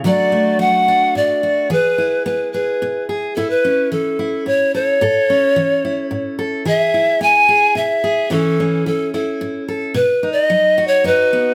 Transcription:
<<
  \new Staff \with { instrumentName = "Pan flute" } { \time 3/4 \key a \major \tempo 4 = 109 d''4 fis''4 d''4 | b'4 b'8 b'4 r8 | a'16 b'8. a'4 cis''8 cis''8~ | cis''2~ cis''8 r8 |
e''4 gis''4 e''4 | a'4 a'8 a'4 r8 | \tuplet 3/2 { b'4 dis''8~ dis''4 cis''8 } b'4 | }
  \new Staff \with { instrumentName = "Steel-string acoustic guitar" } { \time 3/4 \key a \major << { <fis a d' fis'>8 a4 d'4 fis'8 | gis'8 e'4 gis'4 gis'8 | e'8 cis'4 e'4 a'8 | a'8 cis'4 e'4 a'8 |
gis'8 e'4 gis'4 gis'8 | <e cis' e'>8 cis'4 e'4 a'8 | r8 dis'4 fis'8 dis'8 b8 | } \\ { d4 fis4 a,4 | e4 b4 b,4 | a,4 e4 a,4 | a,4 e4 a,4 |
e4 b4 b,4 | a,4 e4 a,4 | b,4 fis4 fis,4 | } >> }
>>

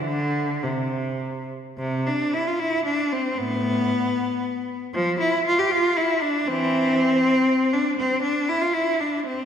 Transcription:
\new Staff \with { instrumentName = "Cello" } { \time 3/4 \key c \major \tempo 4 = 116 << { d4 c4. r8 | c8 d'8 e'16 f'16 e'8 d'8 c'8 | b2~ b8. r16 | f8 e'8 f'16 g'16 f'8 e'8 d'8 |
c'2~ c'8 d'8 | \key d \minor c'8 d'8 e'16 f'16 e'8 d'8 c'8 | } \\ { r2. | r2. | a,4. r4. | r2. |
e4. r4. | r2. | } >> }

